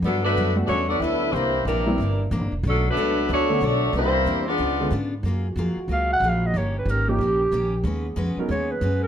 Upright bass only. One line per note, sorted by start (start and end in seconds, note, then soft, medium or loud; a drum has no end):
0.02 0.34 G2 medium
0.35 0.67 F#2 medium
0.68 1.00 E2 medium
1.00 1.32 D2 medium
1.33 1.65 C2 medium
1.65 1.97 A#1 medium
1.98 2.30 G1 medium
2.31 2.41 A1 medium
2.41 2.51 G1 medium
2.52 2.62 E1 medium
2.63 2.95 B1 loud
2.95 3.27 C#2 medium
3.29 3.60 D2 medium
3.61 3.92 B1 medium
3.93 4.24 C2 medium
4.25 4.57 E2 medium
4.59 4.90 C#2 medium
4.91 5.22 G#2 medium
5.23 5.55 F#2 medium
5.56 5.75 F2 medium
5.76 muted upright bass stroke soft
5.88 6.19 C#2 medium
6.20 6.52 A#1 medium
6.54 6.85 G1 medium
6.85 7.17 G#1 medium
7.19 7.50 A#1 medium
7.51 7.83 A#1 medium
7.83 8.15 D#2 medium
8.16 8.35 F2 medium
8.37 muted upright bass stroke soft
8.49 8.80 D#2 medium
8.81 9.07 F#2 medium